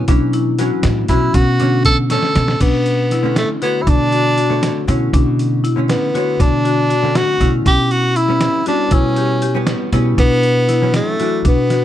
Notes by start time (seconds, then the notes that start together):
Already playing: C#4
0.08 B2 E3 F#3 C#4 D4, kick, closed hi-hat
0.33 E4, closed hi-hat
0.59 E3 F#3 C#4 F#4, snare, closed hi-hat
0.83 A2, snare, closed hi-hat
1.08 B2 E3 F#3 C#4 E4 F#4, kick, snare, closed hi-hat
1.34 B2 C#4 F#4, kick, closed hi-hat
1.60 D3 A3 C#4 D4, snare, closed hi-hat
1.85 A4, kick, snare, closed hi-hat
2.10 D3 A3 C#4 A4, snare, closed hi-hat
2.22 snare
2.35 B2, snare, closed hi-hat
2.48 snare
2.61 B2 B3 D4, kick, closed hi-hat, crash
2.86 closed hi-hat
3.11 E4, snare, closed hi-hat
3.23 D3 A3 C#4
3.36 A3, snare, closed hi-hat
3.62 D3 A3 B3 F#4 C#5, closed hi-hat
3.82 E4
3.87 B2 D4, kick, closed hi-hat
4.12 F#4, closed hi-hat
4.38 F#4, closed hi-hat
4.50 D3 A3 C#5
4.63 snare, closed hi-hat
4.87 B2 D3 A3 C#4 E4, closed hi-hat
5.13 B2 D4, kick, closed hi-hat
5.39 closed hi-hat
5.64 E4, closed hi-hat
5.76 D3 A3 C#4
5.89 B3, snare, closed hi-hat
6.14 D3 A3 F#4 C#5, snare, closed hi-hat
6.40 B2 D4, kick, closed hi-hat
6.65 F#4, closed hi-hat
6.90 F#4, closed hi-hat
7.03 D3 A3 C#4
7.15 F#4, snare, closed hi-hat
7.40 B2 D3 A3 C#4 E4, kick, closed hi-hat
7.66 B2 C#4 G4, kick, closed hi-hat
7.91 F#4, closed hi-hat
8.16 E4, closed hi-hat
8.28 G3 B3 C#4
8.41 snare, closed hi-hat
8.66 G3 B3 C#4 D4 F#4, closed hi-hat
8.91 B2 C#4 E4, kick, closed hi-hat
9.16 G4, closed hi-hat
9.42 G4, closed hi-hat
9.54 G3 B3 C#4
9.67 snare, closed hi-hat
9.92 B2 G3 B3 C#4 E4, snare, closed hi-hat
10.18 B2 B3 D4, kick, closed hi-hat
10.43 closed hi-hat
10.69 E4, snare, closed hi-hat
10.82 E3 F#3 C#4
10.94 A3, snare, closed hi-hat
11.20 E3 F#3 D4 F#4, closed hi-hat
11.45 B2 B3 D4, kick, closed hi-hat
11.70 F#4, snare, closed hi-hat